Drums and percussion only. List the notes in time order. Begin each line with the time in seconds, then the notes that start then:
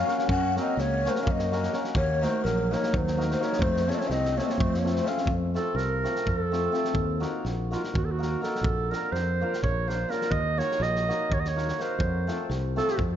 0.08 snare
0.19 snare
0.29 kick
0.56 snare
0.79 snare
1.05 snare
1.15 snare
1.27 kick
1.39 snare
1.52 snare
1.63 snare
1.73 snare
1.84 snare
1.95 kick
2.23 snare
2.45 snare
2.72 snare
2.83 snare
2.94 kick
3.07 snare
3.20 snare
3.31 snare
3.42 snare
3.53 snare
3.62 kick
3.76 snare
3.90 snare
4.01 snare
4.10 snare
4.25 snare
4.38 snare
4.50 snare
4.60 kick
4.74 snare
4.86 snare
4.96 snare
5.06 snare
5.17 snare
5.27 kick
5.55 snare
5.77 snare
6.04 snare
6.15 snare
6.27 kick
6.53 snare
6.73 snare
6.85 snare
6.95 kick
7.22 snare
7.45 snare
7.72 snare
7.84 snare
7.95 kick
8.22 snare
8.43 snare
8.55 snare
8.64 kick
8.92 snare
9.15 snare
9.53 snare
9.64 kick
9.89 snare
10.11 snare
10.21 snare
10.32 kick
10.59 snare
10.71 snare
10.82 snare
10.96 snare
11.10 snare
11.32 kick
11.45 snare
11.57 snare
11.68 snare
11.80 snare
12.00 kick
12.28 snare
12.50 snare
12.77 snare
12.88 snare
12.99 kick